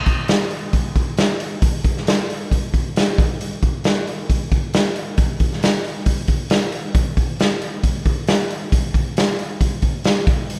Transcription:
0.06 kick, open hi-hat
0.28 snare, open hi-hat
0.51 open hi-hat
0.73 kick, open hi-hat
0.95 kick, open hi-hat
1.17 snare, open hi-hat
1.40 open hi-hat
1.62 kick, open hi-hat
1.84 kick, open hi-hat
1.97 snare
2.07 snare, open hi-hat
2.30 open hi-hat
2.51 kick, open hi-hat
2.74 kick, open hi-hat
2.96 snare, open hi-hat
3.18 kick, open hi-hat
3.41 open hi-hat
3.63 kick, open hi-hat
3.84 snare, open hi-hat
4.07 open hi-hat
4.30 kick, open hi-hat
4.52 kick, open hi-hat
4.74 snare, open hi-hat
4.96 open hi-hat
5.18 kick, open hi-hat
5.40 kick, open hi-hat
5.53 snare
5.63 snare, open hi-hat
5.84 open hi-hat
6.06 kick, open hi-hat
6.28 kick, open hi-hat
6.50 snare, open hi-hat
6.72 open hi-hat
6.95 kick, open hi-hat
7.17 kick, open hi-hat
7.40 snare, open hi-hat
7.62 open hi-hat
7.83 kick, open hi-hat
8.06 kick, open hi-hat
8.27 snare, open hi-hat
8.50 open hi-hat
8.72 kick, open hi-hat
8.94 kick, open hi-hat
9.17 snare, open hi-hat
9.39 open hi-hat
9.61 kick, open hi-hat
9.82 kick, open hi-hat
10.04 snare, open hi-hat
10.27 kick, open hi-hat
10.50 open hi-hat

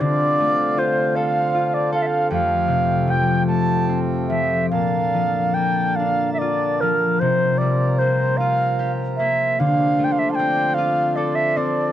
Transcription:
Already playing: C4 E4 G4
0.00 D3 C4 F4 D5
0.40 A3
0.77 F4 C5
1.15 A4 F5
1.54 F4
1.73 D5
1.92 A4 F5
2.02 E5
2.06 F5
2.29 F2 F3 A3 G4 F5
2.68 C3
3.07 F3 G5
3.46 A3 A5
3.89 C4
4.28 F3 E5
4.69 A#2 D3 A#3 F5 A5
5.14 F3
5.53 A#3 G5
5.95 F5
5.99 D4
6.33 E5
6.38 F4 D5
6.80 F3 A#4
7.19 C3 F3 C4 A#4 C5
7.58 G3 D5
7.98 A#3 C5
8.37 F4 F5
8.79 G4
9.16 A#3 E5
9.58 D3 F3 D4 C5 F5
9.99 A3
10.04 G5
10.11 F5
10.18 E5
10.29 F5 A5
10.34 G5
10.39 C4
10.74 F5
10.78 F4
11.16 A4 D5
11.35 E5
11.56 C4 D5

